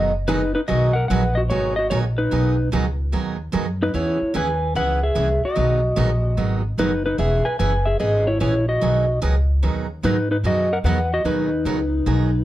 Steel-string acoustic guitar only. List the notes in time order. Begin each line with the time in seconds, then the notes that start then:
Already playing: B2 D#3 F#3 B3 D#4 G#4
0.28 B2 D#3 F#3 B3 D#4 G#4
0.68 B2 D#3 F#3 B3 D#4 G#4
1.10 B2 D#3 F#3 B3 D#4 G#4
1.50 B2 D#3 F#3 B3 D#4 G#4
1.91 B2 D#3 F#3 B3 D#4 G#4
2.31 B2 D#3 F#3 B3 D#4 G#4
2.72 B2 D#3 F#3 B3 D#4 G#4
3.12 B2 D#3 F#3 B3 D#4 G#4
3.52 B2 D#3 F#3 B3 D#4 G#4
3.94 E3 B3 C#4 G#4
4.34 E3 B3 C#4 G#4
4.75 E3 B3 C#4 G#4
5.15 E3 B3 C#4 G#4
5.55 B2 D#3 F#3 B3 D#4 G#4
5.96 B2 D#3 F#3 B3 D#4 G#4
6.37 B2 D#3 F#3 B3 D#4 G#4
6.78 B2 D#3 F#3 B3 D#4 G#4
7.18 E3 B3 C#4 G#4
7.59 E3 B3 C#4 G#4
7.99 E3 B3 C#4 G#4
8.40 E3 B3 C#4 G#4
8.81 B2 D#3 F#3 B3 D#4 G#4
9.22 B2 D#3 F#3 B3 D#4 G#4
9.63 B2 D#3 F#3 B3 D#4 G#4
10.03 B2 D#3 F#3 B3 D#4 G#4
10.44 B2 D#3 F#3 B3 D#4 G#4
10.86 B2 D#3 F#3 B3 D#4 G#4
11.25 B2 D#3 F#3 B3 D#4 G#4
11.65 B2 D#3 F#3 B3 D#4 G#4
12.06 B2 D#3 F#3 B3 D#4 G#4